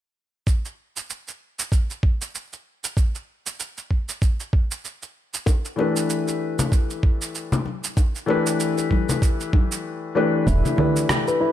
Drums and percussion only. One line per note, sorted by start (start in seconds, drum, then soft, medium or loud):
0.47 kick loud
0.47 shaker medium
0.65 shaker soft
0.96 shaker medium
1.10 shaker soft
1.28 shaker soft
1.59 shaker medium
1.72 kick medium
1.72 shaker soft
1.90 shaker soft
2.03 kick medium
2.21 shaker medium
2.35 shaker soft
2.53 shaker soft
2.84 shaker medium
2.97 kick loud
2.97 shaker medium
3.15 shaker soft
3.46 shaker medium
3.60 shaker medium
3.77 shaker soft
3.91 kick medium
4.09 shaker medium
4.22 kick loud
4.22 shaker soft
4.40 shaker soft
4.53 kick loud
4.71 shaker medium
4.84 shaker soft
5.02 shaker soft
5.34 shaker medium
5.46 kick loud
5.46 high bongo medium
5.46 shaker medium
5.65 shaker soft
5.79 high bongo soft
5.96 shaker medium
6.10 shaker medium
6.28 shaker soft
6.59 high bongo soft
6.59 low conga medium
6.59 shaker medium
6.72 kick loud
6.72 shaker medium
6.90 shaker soft
7.03 kick loud
7.21 shaker medium
7.35 shaker soft
7.52 low conga medium
7.52 shaker soft
7.65 high bongo soft
7.65 high conga soft
7.84 shaker medium
7.97 kick loud
7.97 high bongo medium
7.97 shaker medium
8.15 shaker soft
8.28 high bongo medium
8.46 shaker medium
8.60 shaker medium
8.78 shaker soft
8.91 kick medium
8.91 high conga medium
9.09 high bongo soft
9.09 low conga medium
9.09 shaker medium
9.22 kick loud
9.22 shaker medium
9.40 shaker soft
9.53 kick loud
9.53 high bongo soft
9.53 high conga medium
9.72 shaker medium
10.47 kick loud
10.47 high bongo medium
10.47 shaker medium
10.65 low conga medium
10.65 shaker soft
10.78 high bongo soft
10.78 low conga medium
10.96 shaker medium
11.09 cross-stick loud
11.09 low conga medium
11.09 shaker medium
11.28 shaker soft